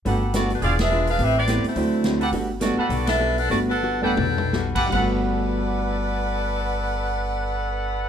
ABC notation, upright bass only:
X:1
M:4/4
L:1/8
Q:"Swing" 1/4=192
K:G
V:1 name="Upright bass" clef=bass
G,,,4 E,,,4 | A,,,3 z D,,4 | G,,,3 z B,,,4 | G,,,4 B,,,3 _A,,, |
G,,,8- | G,,,8 |]